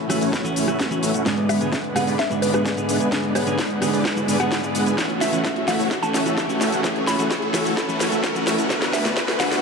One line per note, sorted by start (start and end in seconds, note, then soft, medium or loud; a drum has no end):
0.00 1.22 E3 medium
0.00 1.22 A3 medium
0.00 1.22 C#4 medium
0.00 1.22 F#4 medium
0.00 1.22 A4 medium
0.00 0.28 B5 medium
0.00 riser medium
0.09 0.30 E3 medium
0.09 0.31 A3 medium
0.09 0.19 A3 medium
0.09 0.19 C#4 medium
0.09 0.31 C#4 medium
0.09 0.19 E4 medium
0.09 0.19 F#4 medium
0.09 0.31 F#4 medium
0.09 0.19 E5 medium
0.09 cross-stick medium
0.09 open hi-hat loud
0.09 cabasa medium
0.21 0.30 A3 medium
0.21 0.30 C#4 medium
0.21 0.30 E4 medium
0.21 0.30 F#4 medium
0.21 0.30 C#5 medium
0.21 open hi-hat medium
0.21 cabasa soft
0.33 0.53 A3 medium
0.33 0.53 C#4 medium
0.33 0.53 E4 medium
0.33 0.53 F#4 medium
0.33 0.53 C#5 medium
0.33 kick loud
0.33 snare medium
0.33 closed hi-hat soft
0.33 cabasa soft
0.44 0.65 E3 medium
0.44 0.65 A3 medium
0.44 0.65 C#4 medium
0.44 0.65 E4 medium
0.44 closed hi-hat soft
0.44 cabasa soft
0.56 0.66 A3 medium
0.56 0.66 C#4 medium
0.56 0.66 E4 medium
0.56 0.66 F#4 medium
0.56 0.66 C#5 loud
0.56 open hi-hat loud
0.56 cabasa medium
0.67 0.88 E3 medium
0.67 0.77 A3 medium
0.67 0.88 A3 medium
0.67 0.77 C#4 medium
0.67 0.88 C#4 medium
0.67 0.77 E4 medium
0.67 0.77 F#4 medium
0.67 0.89 F#4 medium
0.67 0.77 E5 medium
0.67 cross-stick medium
0.67 closed hi-hat soft
0.67 cabasa soft
0.79 1.00 A3 medium
0.79 1.00 C#4 medium
0.79 1.00 E4 medium
0.79 1.00 F#4 medium
0.79 1.00 C#5 medium
0.79 kick loud
0.79 snare medium
0.79 closed hi-hat soft
0.79 cabasa soft
0.90 1.12 E3 medium
0.90 1.12 A3 medium
0.90 1.12 C#4 medium
0.90 1.12 F#4 loud
0.90 closed hi-hat soft
0.90 cabasa soft
1.03 1.12 A3 medium
1.03 1.12 C#4 medium
1.03 1.12 E4 medium
1.03 1.12 F#4 medium
1.03 1.12 E5 loud
1.03 open hi-hat loud
1.03 cabasa medium
1.14 1.23 A3 medium
1.14 1.23 C#4 medium
1.14 1.23 E4 medium
1.14 1.23 F#4 medium
1.14 1.23 F#5 loud
1.14 closed hi-hat medium
1.14 cabasa soft
1.25 1.58 G#2 medium
1.25 4.94 D3 medium
1.25 1.58 D3 medium
1.25 1.58 G#3 medium
1.25 1.46 G#3 medium
1.25 4.94 G#3 medium
1.25 1.46 B3 medium
1.25 4.94 B3 medium
1.25 1.58 B3 medium
1.25 1.46 D4 medium
1.25 4.94 G#4 medium
1.25 1.58 G#4 medium
1.25 1.46 B4 medium
1.25 4.94 B4 medium
1.25 1.46 D5 loud
1.25 kick loud
1.25 snare medium
1.25 closed hi-hat soft
1.25 cabasa soft
1.38 closed hi-hat soft
1.49 1.59 G#3 medium
1.49 1.59 B3 medium
1.49 1.59 D4 medium
1.49 1.59 B4 medium
1.49 1.68 E5 medium
1.49 1.59 F#5 medium
1.49 cross-stick medium
1.49 open hi-hat loud
1.49 cabasa medium
1.60 1.74 G#2 medium
1.60 1.74 D3 medium
1.60 1.74 G#3 medium
1.60 1.70 G#3 medium
1.60 1.70 B3 medium
1.60 1.74 B3 medium
1.60 1.70 D4 medium
1.60 1.74 G#4 medium
1.60 1.70 B4 medium
1.60 1.70 G#5 medium
1.60 closed hi-hat soft
1.60 cabasa soft
1.72 1.93 G#3 medium
1.72 1.93 B3 medium
1.72 1.93 D4 medium
1.72 1.93 B4 medium
1.72 1.93 F#5 loud
1.72 kick loud
1.72 snare medium
1.72 closed hi-hat medium
1.72 cabasa soft
1.84 closed hi-hat soft
1.95 2.16 G#2 medium
1.95 2.17 D3 medium
1.95 2.17 G#3 medium
1.95 2.05 G#3 medium
1.95 2.05 B3 medium
1.95 2.17 B3 medium
1.95 2.05 D4 medium
1.95 2.17 G#4 medium
1.95 2.05 B4 medium
1.95 2.15 F#5 medium
1.95 2.05 F#5 medium
1.95 cross-stick medium
1.95 open hi-hat loud
1.95 cabasa medium
2.07 2.16 G#3 medium
2.07 2.16 B3 medium
2.07 2.16 D4 medium
2.07 2.16 B4 medium
2.07 2.16 D5 medium
2.07 open hi-hat medium
2.07 cabasa soft
2.19 2.39 G#3 medium
2.19 2.39 B3 medium
2.19 2.39 D4 medium
2.19 2.39 B4 medium
2.19 2.39 D5 medium
2.19 2.38 E5 medium
2.19 kick loud
2.19 snare medium
2.19 closed hi-hat soft
2.19 cabasa soft
2.30 2.51 G#2 medium
2.30 2.51 D3 medium
2.30 2.51 G#3 medium
2.30 2.51 B3 medium
2.30 2.51 F#4 medium
2.30 closed hi-hat soft
2.30 cabasa soft
2.42 2.52 G#3 medium
2.42 2.52 B3 medium
2.42 2.52 D4 medium
2.42 2.50 B4 medium
2.42 2.52 B4 medium
2.42 2.52 D5 loud
2.42 open hi-hat loud
2.42 cabasa medium
2.53 2.74 G#2 medium
2.53 2.74 D3 medium
2.53 2.74 G#3 medium
2.53 2.63 G#3 medium
2.53 2.63 B3 medium
2.53 2.74 B3 medium
2.53 2.63 D4 medium
2.53 2.75 G#4 medium
2.53 2.61 B4 medium
2.53 2.63 B4 medium
2.53 2.63 F#5 medium
2.53 cross-stick medium
2.53 closed hi-hat soft
2.53 cabasa soft
2.65 2.86 G#3 medium
2.65 2.86 B3 medium
2.65 2.86 D4 medium
2.65 2.86 B4 medium
2.65 2.86 D5 medium
2.65 kick loud
2.65 snare medium
2.65 closed hi-hat soft
2.65 cabasa soft
2.76 2.98 G#2 medium
2.76 2.98 D3 medium
2.76 2.98 G#3 medium
2.76 2.98 B3 medium
2.76 2.98 G#4 loud
2.76 closed hi-hat soft
2.76 cabasa soft
2.89 2.98 G#3 medium
2.89 2.98 B3 medium
2.89 2.98 D4 medium
2.89 2.98 B4 medium
2.89 2.98 F#5 loud
2.89 open hi-hat loud
2.89 cabasa medium
3.00 3.09 G#3 medium
3.00 3.09 B3 medium
3.00 3.09 D4 medium
3.00 3.09 B4 medium
3.00 3.09 G#5 loud
3.00 closed hi-hat soft
3.00 cabasa soft
3.11 3.44 G#2 medium
3.11 3.44 D3 medium
3.11 3.44 G#3 medium
3.11 3.32 G#3 medium
3.11 3.32 B3 medium
3.11 3.44 B3 medium
3.11 3.32 D4 medium
3.11 3.44 G#4 medium
3.11 3.32 B4 medium
3.11 3.32 D5 loud
3.11 kick loud
3.11 snare medium
3.11 closed hi-hat soft
3.11 cabasa soft
3.24 closed hi-hat soft
3.35 3.45 G#3 medium
3.35 3.45 B3 medium
3.35 3.45 D4 medium
3.35 3.45 B4 medium
3.35 3.54 C#5 medium
3.35 3.45 F#5 medium
3.35 cross-stick medium
3.35 open hi-hat loud
3.35 cabasa medium
3.46 3.60 G#2 medium
3.46 3.60 D3 medium
3.46 3.60 G#3 medium
3.46 3.56 G#3 medium
3.46 3.56 B3 medium
3.46 3.60 B3 medium
3.46 3.56 D4 medium
3.46 3.60 G#4 medium
3.46 3.56 B4 medium
3.46 3.56 G#5 medium
3.46 closed hi-hat soft
3.46 cabasa soft
3.58 3.79 G#3 medium
3.58 3.79 B3 medium
3.58 3.79 D4 medium
3.58 3.79 B4 medium
3.58 3.79 F#5 loud
3.58 kick loud
3.58 snare medium
3.58 closed hi-hat soft
3.58 cabasa soft
3.70 closed hi-hat soft
3.81 4.02 G#2 medium
3.81 4.03 D3 medium
3.81 4.03 G#3 medium
3.81 3.91 G#3 medium
3.81 3.91 B3 medium
3.81 4.03 B3 medium
3.81 3.91 D4 medium
3.81 4.03 G#4 loud
3.81 3.91 B4 medium
3.81 3.91 F#5 medium
3.81 cross-stick medium
3.81 open hi-hat loud
3.81 cabasa medium
3.93 4.02 G#3 medium
3.93 4.02 B3 medium
3.93 4.02 D4 medium
3.93 4.02 B4 medium
3.93 4.02 D5 medium
3.93 open hi-hat medium
3.93 cabasa soft
4.05 4.25 G#3 medium
4.05 4.25 B3 medium
4.05 4.25 D4 medium
4.05 4.25 B4 medium
4.05 4.25 D5 medium
4.05 kick loud
4.05 snare medium
4.05 closed hi-hat soft
4.05 cabasa soft
4.16 4.26 G#2 medium
4.16 4.26 D3 medium
4.16 4.26 G#3 medium
4.16 4.26 B3 medium
4.16 4.26 F#4 medium
4.16 closed hi-hat soft
4.16 cabasa soft
4.27 4.37 G#2 loud
4.27 4.37 D3 medium
4.27 4.37 G#3 medium
4.27 4.38 G#3 medium
4.27 4.38 B3 medium
4.27 4.37 B3 medium
4.27 4.38 D4 medium
4.27 4.37 G#4 loud
4.27 4.38 B4 medium
4.27 4.38 D5 loud
4.27 open hi-hat loud
4.27 cabasa medium
4.39 4.60 G#2 medium
4.39 4.60 D3 medium
4.39 4.60 G#3 medium
4.39 4.49 G#3 medium
4.39 4.49 B3 medium
4.39 4.60 B3 medium
4.39 4.49 D4 medium
4.39 4.61 G#4 loud
4.39 4.49 B4 medium
4.39 4.49 F#5 loud
4.39 4.86 F#5 medium
4.39 cross-stick medium
4.39 cabasa soft
4.51 4.72 G#3 medium
4.51 4.72 B3 medium
4.51 4.72 D4 medium
4.51 4.72 B4 medium
4.51 4.72 D5 medium
4.51 kick loud
4.51 snare medium
4.51 closed hi-hat soft
4.51 cabasa soft
4.62 4.95 G#2 medium
4.62 4.95 D3 medium
4.62 4.95 G#3 medium
4.62 4.95 B3 medium
4.62 4.96 G#4 medium
4.62 closed hi-hat soft
4.62 cabasa soft
4.75 4.84 G#3 medium
4.75 4.84 B3 medium
4.75 4.84 D4 medium
4.75 4.84 B4 medium
4.75 4.84 F#5 loud
4.75 open hi-hat loud
4.75 cabasa medium
4.86 4.95 G#3 medium
4.86 4.95 B3 medium
4.86 4.95 D4 medium
4.86 4.95 B4 medium
4.86 4.95 G#5 loud
4.86 closed hi-hat soft
4.86 cabasa soft
4.97 5.30 E3 medium
4.97 8.66 E3 medium
4.97 5.30 A3 medium
4.97 9.62 A3 medium
4.97 5.18 A3 medium
4.97 8.66 C#4 medium
4.97 5.18 C#4 medium
4.97 5.30 C#4 medium
4.97 5.18 E4 medium
4.97 9.62 F#4 medium
4.97 5.18 F#4 medium
4.97 5.30 F#4 medium
4.97 9.62 A4 medium
4.97 5.18 C#5 loud
4.97 kick loud
4.97 snare medium
4.97 closed hi-hat soft
4.97 cabasa soft
5.10 closed hi-hat soft
5.21 5.31 A3 medium
5.21 5.31 C#4 medium
5.21 5.31 E4 medium
5.21 5.31 F#4 medium
5.21 5.40 E5 medium
5.21 5.31 E5 medium
5.21 snare medium
5.21 open hi-hat loud
5.21 cabasa medium
5.32 5.46 E3 medium
5.32 5.46 A3 medium
5.32 5.42 A3 medium
5.32 5.46 C#4 medium
5.32 5.42 C#4 medium
5.32 5.42 E4 medium
5.32 5.42 F#4 medium
5.32 5.46 F#4 medium
5.32 5.42 F#5 medium
5.32 closed hi-hat soft
5.32 cabasa soft
5.44 5.65 A3 medium
5.44 5.65 C#4 medium
5.44 5.65 E4 medium
5.44 5.65 F#4 medium
5.44 5.65 E5 loud
5.44 kick loud
5.44 snare medium
5.44 closed hi-hat soft
5.44 cabasa soft
5.56 closed hi-hat soft
5.67 5.88 E3 medium
5.67 5.89 A3 medium
5.67 5.77 A3 medium
5.67 5.77 C#4 medium
5.67 5.89 C#4 medium
5.67 5.77 E4 medium
5.67 5.77 F#4 medium
5.67 5.89 F#4 medium
5.67 5.77 E5 medium
5.67 5.87 F#5 medium
5.67 snare medium
5.67 open hi-hat loud
5.67 cabasa medium
5.79 5.88 A3 medium
5.79 5.88 C#4 medium
5.79 5.88 E4 medium
5.79 5.88 F#4 medium
5.79 5.88 C#5 medium
5.79 open hi-hat medium
5.79 cabasa soft
5.91 6.12 A3 medium
5.91 6.12 C#4 medium
5.91 6.12 E4 medium
5.91 6.12 F#4 medium
5.91 6.12 C#5 medium
5.91 kick loud
5.91 snare medium
5.91 closed hi-hat soft
5.91 cabasa soft
6.02 6.23 E3 medium
6.02 6.23 A3 medium
6.02 6.23 C#4 medium
6.02 6.23 E4 medium
6.02 6.22 A5 medium
6.02 closed hi-hat soft
6.02 cabasa soft
6.14 6.24 A3 medium
6.14 6.24 C#4 medium
6.14 6.24 E4 medium
6.14 6.24 F#4 medium
6.14 6.24 C#5 loud
6.14 snare medium
6.14 open hi-hat loud
6.14 cabasa medium
6.25 6.46 E3 medium
6.25 6.35 A3 medium
6.25 6.46 A3 medium
6.25 6.35 C#4 medium
6.25 6.46 C#4 medium
6.25 6.35 E4 medium
6.25 6.35 F#4 medium
6.25 6.47 F#4 medium
6.25 6.35 E5 medium
6.25 closed hi-hat soft
6.25 cabasa soft
6.38 6.58 A3 medium
6.38 6.58 C#4 medium
6.38 6.58 E4 medium
6.38 6.58 F#4 medium
6.38 6.58 C#5 loud
6.38 kick loud
6.38 snare medium
6.38 closed hi-hat soft
6.38 cabasa soft
6.48 6.70 E3 medium
6.48 6.70 A3 medium
6.48 6.70 C#4 medium
6.48 6.71 F#4 loud
6.48 closed hi-hat soft
6.48 cabasa soft
6.61 6.70 A3 medium
6.61 6.70 C#4 medium
6.61 6.70 E4 medium
6.61 6.70 F#4 medium
6.61 6.70 E5 loud
6.61 snare medium
6.61 open hi-hat loud
6.61 cabasa medium
6.72 6.81 A3 medium
6.72 6.81 C#4 medium
6.72 6.81 E4 medium
6.72 6.81 F#4 medium
6.72 6.81 F#5 medium
6.72 closed hi-hat soft
6.72 cabasa soft
6.83 7.16 E3 medium
6.83 7.16 A3 medium
6.83 7.05 A3 medium
6.83 7.16 C#4 medium
6.83 7.05 C#4 medium
6.83 7.05 E4 medium
6.83 7.05 F#4 medium
6.83 7.16 F#4 medium
6.83 7.05 C#5 loud
6.83 kick loud
6.83 snare medium
6.83 closed hi-hat medium
6.83 cabasa soft
6.96 closed hi-hat soft
7.07 7.17 A3 medium
7.07 7.17 C#4 medium
7.07 7.17 E4 medium
7.07 7.17 F#4 medium
7.07 7.17 E5 medium
7.07 7.72 B5 loud
7.07 snare medium
7.07 open hi-hat loud
7.07 cabasa medium
7.18 7.32 E3 medium
7.18 7.28 A3 medium
7.18 7.32 A3 medium
7.18 7.28 C#4 medium
7.18 7.32 C#4 medium
7.18 7.28 E4 medium
7.18 7.28 F#4 medium
7.18 7.32 F#4 medium
7.18 7.28 F#5 medium
7.18 closed hi-hat medium
7.18 cabasa soft
7.31 7.51 A3 medium
7.31 7.51 C#4 medium
7.31 7.51 E4 medium
7.31 7.51 F#4 medium
7.31 7.51 E5 loud
7.31 kick loud
7.31 snare medium
7.31 closed hi-hat medium
7.31 cabasa soft
7.42 closed hi-hat soft
7.53 7.75 E3 medium
7.53 7.63 A3 medium
7.53 7.75 A3 medium
7.53 7.63 C#4 medium
7.53 7.75 C#4 medium
7.53 7.63 E4 medium
7.53 7.63 F#4 medium
7.53 7.75 F#4 medium
7.53 7.63 E5 medium
7.53 snare medium
7.53 open hi-hat loud
7.53 cabasa medium
7.65 7.74 A3 medium
7.65 7.74 C#4 medium
7.65 7.74 E4 medium
7.65 7.74 F#4 medium
7.65 7.74 C#5 medium
7.65 open hi-hat medium
7.65 cabasa soft
7.77 7.98 A3 medium
7.77 7.98 C#4 medium
7.77 7.98 E4 medium
7.77 7.98 F#4 medium
7.77 7.98 C#5 medium
7.77 kick loud
7.77 snare medium
7.77 closed hi-hat soft
7.77 cabasa soft
7.88 8.09 E3 medium
7.88 8.09 A3 medium
7.88 8.09 C#4 medium
7.88 8.09 E4 medium
7.88 closed hi-hat soft
7.88 cabasa soft
8.00 8.10 A3 medium
8.00 8.10 C#4 medium
8.00 8.10 E4 medium
8.00 8.10 F#4 medium
8.00 8.10 C#5 loud
8.00 snare medium
8.00 open hi-hat loud
8.00 cabasa medium
8.11 8.32 E3 medium
8.11 8.32 A3 medium
8.11 8.21 A3 medium
8.11 8.21 C#4 medium
8.11 8.33 C#4 medium
8.11 8.21 E4 medium
8.11 8.21 F#4 medium
8.11 8.33 F#4 medium
8.11 8.21 E5 medium
8.11 closed hi-hat medium
8.11 cabasa soft
8.24 8.44 A3 medium
8.24 8.44 C#4 medium
8.24 8.44 E4 medium
8.24 8.44 F#4 medium
8.24 8.44 C#5 medium
8.24 kick loud
8.24 snare medium
8.24 closed hi-hat soft
8.24 cabasa soft
8.35 8.56 E3 medium
8.35 8.56 A3 medium
8.35 8.56 C#4 medium
8.35 8.57 F#4 loud
8.35 closed hi-hat soft
8.35 cabasa soft
8.47 8.56 A3 medium
8.47 8.56 C#4 medium
8.47 8.56 E4 medium
8.47 8.56 F#4 medium
8.47 8.56 E5 loud
8.47 snare medium
8.47 open hi-hat loud
8.47 cabasa medium
8.58 8.67 A3 medium
8.58 8.67 C#4 medium
8.58 8.67 E4 medium
8.58 8.67 F#4 medium
8.58 8.67 F#5 loud
8.58 closed hi-hat medium
8.58 cabasa soft
8.69 9.02 D3 medium
8.69 9.62 D3 medium
8.69 8.91 A3 medium
8.69 9.02 A3 medium
8.69 9.62 B3 medium
8.69 9.02 B3 medium
8.69 8.91 D4 medium
8.69 8.91 F#4 medium
8.69 9.03 F#4 medium
8.69 8.91 B4 medium
8.69 8.91 F#5 loud
8.69 kick loud
8.69 snare medium
8.69 closed hi-hat medium
8.69 cabasa soft
8.82 snare medium
8.82 closed hi-hat soft
8.93 9.03 A3 medium
8.93 9.03 D4 medium
8.93 9.03 F#4 medium
8.93 9.03 B4 medium
8.93 9.13 E5 medium
8.93 9.03 G#5 medium
8.93 snare medium
8.93 open hi-hat loud
8.93 cabasa medium
9.04 9.18 D3 medium
9.04 9.14 A3 medium
9.04 9.18 A3 medium
9.04 9.18 B3 medium
9.04 9.14 D4 medium
9.04 9.14 F#4 medium
9.04 9.18 F#4 medium
9.04 9.14 B4 medium
9.04 9.14 A5 medium
9.04 snare medium
9.04 closed hi-hat medium
9.04 cabasa soft
9.17 9.37 A3 medium
9.17 9.37 D4 medium
9.17 9.37 F#4 medium
9.17 9.37 B4 medium
9.17 9.37 G#5 loud
9.17 kick loud
9.17 snare loud
9.17 closed hi-hat medium
9.17 cabasa soft
9.28 snare medium
9.28 closed hi-hat soft
9.39 9.61 D3 medium
9.39 9.49 A3 medium
9.39 9.61 A3 medium
9.39 9.61 B3 medium
9.39 9.49 D4 medium
9.39 9.49 F#4 medium
9.39 9.61 F#4 loud
9.39 9.49 B4 medium
9.39 9.59 F#5 medium
9.39 9.49 G#5 medium
9.39 snare medium
9.39 open hi-hat loud
9.39 cabasa medium
9.51 9.60 A3 medium
9.51 9.60 D4 medium
9.51 9.60 F#4 medium
9.51 9.60 B4 medium
9.51 9.60 F#5 medium
9.51 snare medium
9.51 open hi-hat medium
9.51 cabasa soft